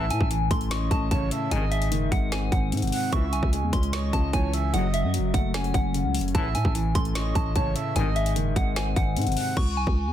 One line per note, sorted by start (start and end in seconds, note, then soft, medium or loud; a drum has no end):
0.00 0.12 A1 loud
0.00 0.90 A2 loud
0.00 0.29 E5 loud
0.10 0.20 A2 loud
0.10 0.48 G#5 medium
0.10 closed hi-hat medium
0.21 0.50 A1 loud
0.21 kick medium
0.31 1.31 E3 medium
0.31 closed hi-hat medium
0.51 0.89 A1 loud
0.51 1.51 A3 medium
0.51 0.70 C6 medium
0.51 kick loud
0.51 closed hi-hat medium
0.61 closed hi-hat soft
0.71 1.51 C#4 medium
0.71 1.09 D#5 medium
0.71 0.90 C#6 medium
0.71 snare loud
0.71 closed hi-hat medium
0.91 1.10 A1 loud
0.91 1.52 A2 medium
0.91 1.10 A5 medium
0.91 kick loud
0.91 closed hi-hat medium
1.11 1.31 A1 loud
1.11 1.51 C#3 medium
1.11 1.30 C#5 medium
1.11 1.49 A5 medium
1.11 kick medium
1.11 closed hi-hat medium
1.31 1.51 E5 medium
1.31 closed hi-hat medium
1.51 1.93 G#1 loud
1.51 1.64 C2 loud
1.51 1.64 G#2 loud
1.51 2.51 G#2 loud
1.51 1.64 D#3 loud
1.51 1.89 D#5 loud
1.51 1.71 G#5 medium
1.51 closed hi-hat medium
1.71 2.09 E5 medium
1.71 closed hi-hat medium
1.82 closed hi-hat medium
1.91 2.11 F#1 loud
1.91 2.92 D#3 medium
1.91 closed hi-hat medium
2.12 2.50 G#1 loud
2.12 3.13 G#3 medium
2.12 2.31 F#5 medium
2.12 kick loud
2.12 closed hi-hat medium
2.32 3.13 C4 medium
2.32 2.51 G#5 medium
2.32 snare loud
2.32 closed hi-hat medium
2.52 2.74 G#1 loud
2.52 3.13 G#2 medium
2.52 3.09 F#5 medium
2.52 kick loud
2.52 closed hi-hat medium
2.72 2.84 G#2 loud
2.72 3.13 C3 medium
2.72 closed hi-hat medium
2.77 closed hi-hat medium
2.82 2.92 G#1 loud
2.82 closed hi-hat medium
2.87 closed hi-hat soft
2.92 3.12 F#5 medium
2.92 open hi-hat medium
3.12 3.25 C#2 loud
3.12 3.34 C#2 loud
3.12 3.25 G#2 loud
3.12 4.12 C#3 medium
3.12 3.25 E3 loud
3.12 3.50 E5 loud
3.12 3.32 C#6 medium
3.12 kick loud
3.12 closed hi-hat medium
3.33 3.42 C2 loud
3.33 3.71 G#5 medium
3.33 closed hi-hat medium
3.43 3.64 C#2 loud
3.43 kick medium
3.53 4.53 G#3 medium
3.53 closed hi-hat medium
3.63 3.72 E2 loud
3.73 4.12 C#2 loud
3.73 4.74 C#4 medium
3.73 3.92 C6 medium
3.73 kick medium
3.73 closed hi-hat medium
3.83 closed hi-hat soft
3.93 4.74 C#5 loud
3.93 4.31 D#5 medium
3.93 4.12 C#6 medium
3.93 snare loud
3.93 closed hi-hat medium
4.13 4.33 C#2 loud
4.13 4.74 C#3 medium
4.13 4.32 A5 medium
4.13 kick loud
4.13 closed hi-hat medium
4.33 4.72 C#2 loud
4.33 4.73 E3 medium
4.33 4.52 C#5 medium
4.33 4.71 G#5 medium
4.33 kick loud
4.33 closed hi-hat medium
4.54 4.73 E5 medium
4.54 closed hi-hat medium
4.73 5.05 F#1 loud
4.73 4.86 C#2 loud
4.73 5.73 F#2 loud
4.73 4.86 A2 loud
4.73 4.86 F#3 loud
4.73 5.11 D#5 loud
4.73 4.93 F#5 medium
4.73 closed hi-hat medium
4.94 5.32 E5 medium
4.94 closed hi-hat medium
5.04 5.20 F#2 loud
5.14 6.15 F#3 medium
5.14 closed hi-hat medium
5.19 5.33 F#1 medium
5.34 5.73 F#1 loud
5.34 6.35 A3 medium
5.34 5.53 F#5 medium
5.34 kick medium
5.34 closed hi-hat medium
5.54 6.35 C#4 loud
5.54 5.73 G#5 medium
5.54 snare loud
5.54 closed hi-hat medium
5.64 closed hi-hat medium
5.74 6.06 F#1 loud
5.74 6.35 F#2 medium
5.74 6.31 F#5 medium
5.74 kick loud
5.74 closed hi-hat medium
5.94 6.35 C#3 medium
5.94 closed hi-hat medium
6.05 6.21 C#2 loud
6.15 closed hi-hat medium
6.15 open hi-hat medium
6.20 6.34 F#1 medium
6.20 closed hi-hat medium
6.28 closed hi-hat soft
6.35 6.56 A1 loud
6.35 6.48 C#2 medium
6.35 6.48 A2 loud
6.35 7.34 A2 loud
6.35 6.47 E3 loud
6.35 6.73 E5 loud
6.35 6.54 A5 medium
6.35 kick loud
6.35 closed hi-hat medium
6.55 6.64 A2 loud
6.55 6.93 G#5 medium
6.55 closed hi-hat medium
6.65 6.94 A1 loud
6.65 kick medium
6.75 7.76 E3 medium
6.75 closed hi-hat medium
6.95 7.34 A1 loud
6.95 7.96 A3 medium
6.95 7.14 C6 medium
6.95 kick medium
6.95 closed hi-hat medium
7.05 closed hi-hat soft
7.15 7.96 C#4 medium
7.15 7.53 D#5 medium
7.15 7.34 C#6 medium
7.15 snare loud
7.15 closed hi-hat medium
7.35 7.55 A1 loud
7.35 7.96 A2 medium
7.35 7.55 A5 medium
7.35 kick loud
7.35 closed hi-hat medium
7.55 7.75 A1 loud
7.55 7.96 C#3 medium
7.55 7.75 C#5 medium
7.55 7.93 A5 medium
7.55 kick medium
7.55 closed hi-hat medium
7.76 7.95 E5 medium
7.76 closed hi-hat medium
7.96 8.38 G#1 loud
7.96 8.09 C2 medium
7.96 8.09 G#2 medium
7.96 8.95 G#2 loud
7.96 8.09 D#3 loud
7.96 8.34 D#5 loud
7.96 8.15 G#5 medium
7.96 closed hi-hat medium
8.16 8.54 E5 medium
8.16 closed hi-hat medium
8.26 closed hi-hat medium
8.36 8.55 F#1 medium
8.36 9.37 D#3 medium
8.36 closed hi-hat medium
8.56 8.95 G#1 loud
8.56 9.57 G#3 medium
8.56 8.75 F#5 medium
8.56 kick medium
8.56 closed hi-hat medium
8.76 9.57 C4 loud
8.76 8.95 G#5 medium
8.76 snare loud
8.76 closed hi-hat medium
8.96 9.18 G#1 loud
8.96 9.57 G#2 medium
8.96 9.53 F#5 medium
8.96 kick loud
8.96 closed hi-hat medium
9.17 9.28 G#2 loud
9.17 9.57 C3 medium
9.17 closed hi-hat medium
9.22 closed hi-hat medium
9.27 9.36 G#1 loud
9.27 closed hi-hat medium
9.32 closed hi-hat soft
9.37 9.56 F#5 medium
9.37 open hi-hat medium
9.57 9.78 C#2 loud
9.57 9.76 C#6 medium
9.57 kick loud
9.57 crash medium
9.77 9.87 C2 loud
9.77 10.13 G#5 medium
9.87 10.09 C#2 loud
9.87 kick medium
10.07 10.13 E2 loud